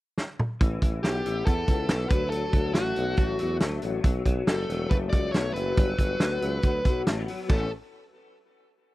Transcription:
0.18 snare medium
0.39 mid tom medium
0.61 0.79 A1 medium
0.61 0.81 E3 medium
0.61 kick loud
0.61 closed hi-hat medium
0.82 1.00 A1 medium
0.82 1.24 E3 medium
0.82 kick medium
0.82 closed hi-hat medium
1.03 1.22 B1 medium
1.03 1.45 B3 soft
1.03 1.43 G4 medium
1.03 snare medium
1.03 closed hi-hat medium
1.25 1.43 A1 medium
1.25 1.66 E3 medium
1.25 closed hi-hat medium
1.46 1.65 E2 medium
1.46 1.88 B3 medium
1.46 2.09 A4 medium
1.46 kick medium
1.46 closed hi-hat medium
1.67 1.91 C#2 medium
1.67 2.10 E3 medium
1.67 kick medium
1.67 closed hi-hat medium
1.89 2.08 B1 medium
1.89 2.15 B3 soft
1.89 snare loud
1.89 closed hi-hat medium
2.09 2.47 D2 medium
2.09 2.31 F#3 medium
2.09 2.29 B4 medium
2.09 kick loud
2.09 closed hi-hat medium
2.30 2.53 F#3 medium
2.30 2.71 A4 medium
2.30 closed hi-hat medium
2.53 2.72 D2 medium
2.53 2.96 F#3 medium
2.53 kick medium
2.53 closed hi-hat medium
2.73 2.94 A1 medium
2.73 3.17 A3 medium
2.73 3.56 F#4 medium
2.73 snare loud
2.73 closed hi-hat medium
2.96 3.15 B1 medium
2.96 3.39 F#3 medium
2.96 closed hi-hat medium
3.17 3.36 A1 medium
3.17 3.61 A3 medium
3.17 kick medium
3.17 closed hi-hat medium
3.39 3.59 E2 medium
3.39 3.82 F#3 medium
3.39 closed hi-hat medium
3.60 3.80 D2 medium
3.60 4.08 A3 medium
3.60 snare loud
3.60 closed hi-hat medium
3.82 4.01 A1 medium
3.82 4.03 F#3 soft
3.82 closed hi-hat medium
4.04 4.22 B1 medium
4.04 4.25 F#3 medium
4.04 kick loud
4.04 closed hi-hat medium
4.26 4.44 B1 medium
4.26 4.69 F#3 medium
4.26 kick medium
4.26 closed hi-hat medium
4.47 4.65 F#1 medium
4.47 4.58 G3 medium
4.47 4.88 A4 medium
4.47 snare loud
4.47 closed hi-hat medium
4.58 4.89 A3 soft
4.69 4.87 E1 medium
4.69 5.12 F#3 medium
4.69 closed hi-hat medium
4.90 5.09 F#1 medium
4.90 5.33 A3 medium
4.90 4.96 B4 medium
4.90 kick medium
4.90 closed hi-hat medium
5.09 5.31 C#2 medium
5.09 5.54 F#3 medium
5.09 5.32 D5 loud
5.09 kick medium
5.09 closed hi-hat medium
5.32 5.52 B1 medium
5.32 5.81 A3 medium
5.32 5.53 C#5 loud
5.32 snare loud
5.32 closed hi-hat medium
5.54 5.73 F#1 medium
5.54 5.76 F#3 medium
5.54 7.02 B4 medium
5.54 closed hi-hat medium
5.77 5.95 G1 loud
5.77 5.98 F#3 medium
5.77 kick loud
5.77 closed hi-hat medium
5.98 6.17 G1 medium
5.98 6.41 F#3 medium
5.98 kick medium
5.98 closed hi-hat medium
6.20 6.38 D2 medium
6.20 6.64 B3 soft
6.20 snare loud
6.20 closed hi-hat medium
6.42 6.60 C#2 loud
6.42 6.84 F#3 medium
6.42 closed hi-hat medium
6.63 6.82 D2 medium
6.63 7.07 B3 medium
6.63 kick medium
6.63 closed hi-hat medium
6.85 7.03 B1 medium
6.85 7.28 F#3 medium
6.85 kick medium
6.85 closed hi-hat medium
7.07 7.26 A1 medium
7.07 7.18 A3 medium
7.07 snare loud
7.07 closed hi-hat medium
7.18 7.50 B3 medium
7.28 7.50 F#3 soft
7.28 open hi-hat medium
7.49 7.70 A1 medium
7.49 7.67 E3 medium
7.49 7.68 B3 medium
7.49 7.68 C#4 medium
7.49 7.70 A4 medium
7.49 kick loud
7.49 crash medium

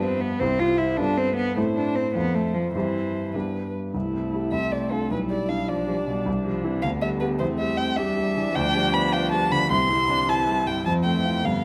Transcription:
0.00 0.39 G2 medium
0.00 0.37 B3 soft
0.00 0.22 C4 medium
0.00 0.37 F4 soft
0.00 0.38 G4 soft
0.00 0.42 B4 soft
0.21 0.41 B3 medium
0.39 0.97 C2 medium
0.39 0.61 C4 medium
0.39 0.94 C4 soft
0.39 0.95 E4 soft
0.39 0.95 G4 soft
0.39 1.00 C5 soft
0.60 0.80 F4 medium
0.78 0.98 E4 medium
0.97 1.55 G2 soft
0.97 1.53 B3 soft
0.97 1.19 D4 medium
0.97 1.53 F4 soft
0.97 1.53 A4 soft
0.97 1.56 B4 soft
1.18 1.36 C4 medium
1.37 1.56 B3 medium
1.57 2.13 A2 medium
1.57 1.64 A3 medium
1.57 2.11 C4 soft
1.57 2.11 E4 soft
1.57 2.12 A4 soft
1.57 2.11 C5 soft
1.77 1.97 D4 medium
1.96 2.15 C4 medium
2.14 2.73 F2 medium
2.14 2.37 B3 medium
2.14 2.70 C4 soft
2.14 2.71 F4 soft
2.14 2.71 A4 soft
2.14 2.73 C5 soft
2.35 2.56 A3 medium
2.54 2.74 F3 medium
2.74 3.32 G2 soft
2.74 3.33 E3 medium
2.74 3.30 C4 soft
2.74 3.31 E4 soft
2.74 3.31 G4 soft
2.74 3.33 C5 soft
3.34 3.92 G2 soft
3.34 3.90 B3 soft
3.34 3.90 D4 soft
3.34 3.91 G4 soft
3.34 3.74 B4 soft
3.94 4.50 C2 soft
3.94 5.13 A3 soft
3.94 4.54 E4 soft
4.13 4.45 C4 soft
4.34 4.51 E4 soft
4.34 4.51 G4 soft
4.52 5.09 C2 soft
4.52 5.12 C4 soft
4.52 4.73 E5 medium
4.72 5.03 A3 soft
4.72 4.93 D5 medium
4.91 5.09 D4 soft
4.91 5.09 F4 soft
4.91 5.11 A4 medium
5.11 6.23 B1 soft
5.11 5.69 G3 soft
5.11 5.69 E4 soft
5.11 5.19 B4 medium
5.30 5.61 G3 soft
5.30 5.51 D5 medium
5.49 5.80 D4 soft
5.49 5.70 F5 medium
5.67 5.87 F3 soft
5.67 6.85 D4 medium
5.67 5.99 F4 soft
5.67 6.27 D5 medium
5.87 5.95 F3 soft
5.87 6.19 G3 soft
6.06 6.26 B2 soft
6.06 6.24 G3 soft
6.25 6.82 C2 medium
6.25 6.33 G3 soft
6.45 6.66 F3 soft
6.45 6.76 G3 soft
6.64 6.85 E3 soft
6.64 6.81 C4 soft
6.64 6.82 E4 soft
6.82 7.39 D2 soft
6.82 7.42 D3 medium
6.82 7.40 B3 medium
6.82 6.90 F5 medium
7.02 7.33 G3 soft
7.02 7.10 E5 medium
7.20 7.39 B3 soft
7.20 7.39 G4 soft
7.20 7.28 B4 medium
7.39 8.52 E2 medium
7.39 7.99 A3 medium
7.39 7.99 C4 medium
7.39 7.47 C5 medium
7.59 7.91 G3 soft
7.59 7.79 E5 medium
7.77 8.10 C4 soft
7.77 7.98 G5 medium
7.96 8.54 G3 medium
7.96 9.69 D4 medium
7.96 8.29 G4 soft
7.96 8.57 E5 medium
8.17 8.48 G3 soft
8.37 8.56 E3 soft
8.55 9.67 D2 medium
8.55 9.71 F3 medium
8.55 8.95 G5 medium
8.74 9.05 G3 soft
8.93 9.24 B3 soft
8.93 9.14 B5 medium
9.12 9.43 F4 soft
9.12 9.31 G5 medium
9.31 9.62 G3 soft
9.31 9.53 A5 medium
9.50 9.70 D3 soft
9.50 9.71 B5 medium
9.69 10.82 C2 medium
9.69 10.26 E3 medium
9.69 9.91 C4 medium
9.69 10.30 C6 medium
9.89 10.20 G3 soft
9.89 10.11 E4 medium
10.08 10.39 C4 soft
10.08 10.30 D4 medium
10.27 10.84 E3 medium
10.27 10.86 C4 medium
10.27 10.59 E4 soft
10.27 10.68 A5 medium
10.48 10.78 G3 soft
10.66 10.86 G2 soft
10.66 10.85 G5 medium
10.85 11.43 F2 medium
10.85 11.15 F3 soft
10.85 11.41 C4 soft
10.85 10.93 A5 medium
11.04 11.36 A3 soft
11.04 11.47 G5 medium
11.14 11.46 E3 medium
11.25 11.43 C4 soft
11.25 11.43 F4 soft
11.44 11.64 G2 medium
11.44 11.64 D3 medium
11.44 11.64 B3 soft
11.44 11.64 F5 medium

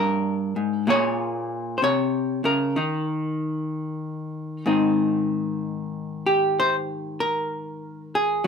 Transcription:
0.00 0.55 G2 medium
0.00 0.83 G3 soft
0.00 0.83 A#3 soft
0.00 0.84 D4 soft
0.00 0.88 A#4 medium
0.56 0.87 G#2 medium
0.87 1.81 A#2 medium
0.87 2.73 A#3 medium
0.87 2.73 F4 soft
0.87 2.45 G#4 soft
0.87 1.77 C#5 loud
1.78 1.83 C5 medium
1.82 2.44 C3 medium
1.82 2.77 C#5 loud
2.44 2.76 C#3 medium
2.44 4.66 A#4 medium
2.76 4.65 D#3 medium
2.76 4.67 D#4 soft
4.66 8.40 G#2 medium
4.66 8.44 D#3 soft
4.66 8.41 C4 soft
4.66 6.26 D#4 soft
6.26 7.51 G4 medium
6.60 6.76 C5 loud
7.20 8.13 A#4 medium
8.15 8.45 G#4 medium

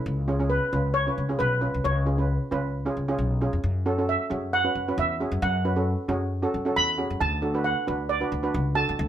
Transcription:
0.06 0.58 C#2 loud
0.28 0.35 C#4 medium
0.28 0.35 F4 medium
0.28 0.36 G#4 medium
0.39 0.60 C#4 medium
0.39 0.60 F4 medium
0.39 0.60 G#4 medium
0.50 0.96 B4 medium
0.73 1.07 C#2 medium
0.73 0.93 C#4 medium
0.73 0.93 F4 medium
0.73 0.93 B4 medium
0.94 1.41 C#5 loud
1.07 1.20 C#4 medium
1.07 1.20 F4 medium
1.07 1.21 B4 medium
1.18 1.35 C#2 medium
1.29 1.49 C#4 medium
1.29 1.49 F4 medium
1.29 1.50 G#4 medium
1.39 1.66 B1 medium
1.39 1.86 B4 medium
1.61 1.89 C#4 medium
1.61 1.89 F4 medium
1.61 1.89 B4 medium
1.74 1.82 C#2 medium
1.84 2.37 C#2 loud
1.84 2.26 C#5 medium
2.06 2.14 C#4 medium
2.06 2.14 F4 medium
2.06 2.14 G#4 medium
2.18 2.38 C#4 medium
2.18 2.39 F4 medium
2.18 2.39 B4 medium
2.51 2.86 C#2 medium
2.51 2.72 C#4 medium
2.51 2.72 F4 medium
2.51 2.72 B4 medium
2.86 2.99 C#4 medium
2.86 2.99 F4 medium
2.86 2.99 G#4 medium
2.97 3.14 C#2 medium
3.08 3.28 C#4 medium
3.08 3.28 F4 medium
3.08 3.28 G#4 medium
3.18 3.45 B1 medium
3.41 3.64 C#4 medium
3.41 3.64 F4 medium
3.41 3.64 G#4 medium
3.53 3.61 F2 medium
3.64 4.15 F#2 medium
3.86 3.93 C#4 medium
3.86 3.93 F#4 medium
3.86 3.93 A4 medium
3.98 4.18 C#4 medium
3.98 4.18 F#4 medium
3.98 4.18 A4 medium
4.09 4.55 E5 medium
4.30 4.65 F#2 medium
4.30 4.50 C#4 medium
4.30 4.51 F#4 medium
4.30 4.51 G#4 medium
4.53 4.95 F#5 loud
4.64 4.77 C#4 medium
4.64 4.77 F#4 medium
4.64 4.78 B4 medium
4.75 4.92 F#2 medium
4.88 5.08 C#4 medium
4.88 5.08 F#4 medium
4.88 5.08 B4 medium
4.98 5.24 E2 medium
4.98 5.44 E5 medium
5.20 5.47 C#4 medium
5.20 5.47 F#4 medium
5.20 5.47 G#4 medium
5.32 5.40 F#2 medium
5.42 5.94 F#2 loud
5.42 5.84 F#5 medium
5.65 5.72 C#4 medium
5.65 5.72 F#4 medium
5.65 5.72 B4 medium
5.76 5.96 C#4 medium
5.76 5.96 F#4 medium
5.76 5.96 A4 medium
6.08 6.43 F#2 medium
6.08 6.29 C#4 medium
6.08 6.29 F#4 medium
6.08 6.29 G#4 medium
6.43 6.56 C#4 medium
6.43 6.56 F#4 medium
6.43 6.56 A4 medium
6.54 6.71 F#2 medium
6.65 6.85 C#4 medium
6.65 6.86 F#4 medium
6.65 6.86 A4 medium
6.76 7.03 E2 loud
6.76 7.22 B5 loud
6.98 7.20 C#4 medium
6.98 7.20 F#4 medium
6.98 7.21 G#4 medium
7.10 7.18 F#2 medium
7.21 7.72 D2 loud
7.21 7.66 A5 loud
7.42 7.49 D4 medium
7.42 7.50 F#4 medium
7.42 7.50 A4 medium
7.54 7.74 D4 medium
7.54 7.74 F#4 medium
7.54 7.75 B4 medium
7.64 8.06 F#5 medium
7.87 8.22 D2 medium
7.87 8.07 D4 medium
7.87 8.07 F#4 medium
7.87 8.08 B4 medium
8.09 8.51 D5 medium
8.21 8.34 D4 medium
8.21 8.34 F#4 medium
8.21 8.34 B4 medium
8.32 8.49 D2 medium
8.43 8.63 D4 medium
8.43 8.63 F#4 medium
8.43 8.64 B4 medium
8.54 8.80 C#2 loud
8.75 9.03 D4 medium
8.75 9.03 F#4 medium
8.75 9.03 A4 medium
8.75 9.08 A5 loud
8.89 8.97 D2 medium
8.99 9.08 D2 loud

